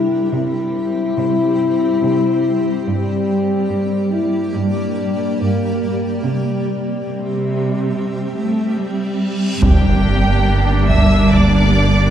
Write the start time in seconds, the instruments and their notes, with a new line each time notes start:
Already playing: cello section C3, ambient pad G3 C4 G4 C5, french horn section E4
0.32 cello section C3, french horn section E4
1.17 cello section C3
2.02 cello section C3
2.86 cello section G2, ambient pad G3 A#3 G4 D5, french horn section G3
3.71 cello section G2
4.12 french horn section E4
4.55 cello section G2, french horn section D4
5.40 cello section G2, french horn section A#3
6.24 cello section C3, ambient pad G3 C4 G4 E5, french horn section G3, reverse cymbal
7.09 cello section C3
8.35 cello section A3
8.78 cello section G3
9.62 double bass section G1, sub bass G1, cello section G2, ambient pad G3 A#3 G4 D5, viola section A#3 D4, violin section G4 G5, taiko, impact
10.89 violin section E5 E6, taiko
11.31 violin section D5 D6, taiko